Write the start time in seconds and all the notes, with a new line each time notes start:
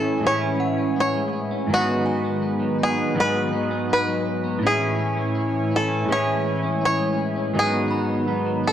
Already playing: A2 E3 C#4 E4 G#4 A4 C#5 E5 G#5
0.05 C#4
0.20 A2 G#3 E4
0.24 C#4 E4 G#4 C#5
0.41 C#4
0.60 E4 F#5
0.78 C#4
0.96 E4
1.00 C#5
1.14 G#3
1.33 E4
1.51 C#4
1.67 G#2 D#3 F#3 G#3 B3 D#4 F#4 B4
1.72 B3 F#4 G#4
1.88 B3
2.06 D#4 G#5
2.24 B3
2.42 D#4
2.60 F#3
2.79 D#4
2.83 G#4
2.97 B3
3.15 G#2 D#3 F#3 B3 D#4 F#4 G#4
3.20 B4
3.34 B3
3.51 B3 D#4 F#4 G#4
3.56 F#3
3.71 B3
3.90 D#4 B4
4.07 F#3
4.26 D#4
4.44 B3
4.59 A2 E3 C#4 E4 C#5 G#5
4.63 C#4 E4 G#4
4.80 C#4
4.99 E4
5.17 C#4
5.35 E4
5.71 E4
5.76 A4
5.90 C#4
6.06 A2 G#3 E4
6.10 C#4 E4 G#4 C#5
6.26 C#4
6.44 E4
6.63 C#4
6.81 E4
6.85 C#5
6.99 G#3
7.18 E4
7.36 C#4
7.53 G#2 D#3 F#3 B3 D#4 F#4 G#4 B4
7.59 G#4
7.73 B3
7.91 D#4 B5
8.10 B3
8.26 F#3 B3 D#4
8.46 F#3
8.64 D#4 A4